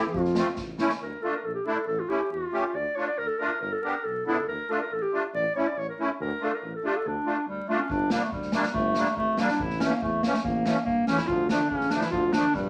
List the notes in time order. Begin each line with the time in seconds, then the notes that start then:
0.05 F3 F4
0.14 F2, kick
0.25 snare
0.35 A3 C4 F4, snare
0.56 A1, kick, snare
0.78 A3 C#4 E4, snare
0.89 snare
1.02 D2 A#4
1.22 A3 D4 F4 A4
1.35 A#4
1.44 A#1 A4
1.55 G4
1.66 A3 D4 E4 A4
1.87 A1 A4
1.99 F4
2.09 A3 C#4 E4 G4
2.31 E2 F4
2.52 A3 C#4 G4
2.74 D2 D5
2.96 A3 D4 F4 C#5
3.07 D5
3.18 D2 A#4
3.27 A4
3.39 A3 D4 F4 A#4
3.61 G1 A#4
3.72 A4
3.82 B3 D4 G4 A#4
4.04 B1 A4
4.26 C#2 B3 D4 E4 A4
4.47 D2 A#4
4.69 A3 D4 F4 A4
4.81 A#4
4.91 A1 A4
5.02 G4
5.13 A3 D4 F4
5.34 A1 D5
5.55 A3 C#4 E4 C#5
5.68 D5
5.76 A1 C#5
5.89 A#4
5.99 A3 C#4 E4
6.20 D2 A#4
6.41 A3 D4 F4 A4
6.48 A4
6.55 A#4
6.63 A1
6.76 A4
6.84 A3 D4 F4 G4
6.97 A4
7.06 D2 D4
7.26 A3 D4 F4
7.47 D2 G3
7.69 A3 D4 F4
7.78 C#4
7.90 G1 D4, kick
8.10 G3 A#3 D4, snare
8.23 A3
8.32 D2 G3, kick
8.42 snare
8.52 G3 A3 A#3 D4, snare
8.63 G3, snare
8.73 G1 A3, kick
8.95 G3 A#3 D4, snare
9.06 snare
9.17 G#1 A3, kick
9.37 G3 A#3 D4, snare
9.49 D4, snare
9.53 D4 E4
9.59 A1 E4, kick
9.70 snare
9.80 E3 A3 C#4, snare
9.90 A#3, snare
10.02 E2 A3, kick
10.23 E3 A3 A#3 C#4, snare
10.33 A3, snare
10.43 A1 A#3, kick
10.66 E3 A3 C#4, snare
10.85 G2 A#3, kick
11.07 E2 E3 A3 C#4, snare
11.18 E4, snare
11.27 D2 F3 F4, kick
11.49 D3 F3 A3 D4, snare
11.69 A1 C#3 C#4, kick
11.81 snare
11.90 D3 F3 A3 D4, snare
12.01 E3 E4, snare
12.11 D2 F3 F4, kick
12.33 D3 F3 A3 D4, snare
12.54 A#1 G2 G3, kick, snare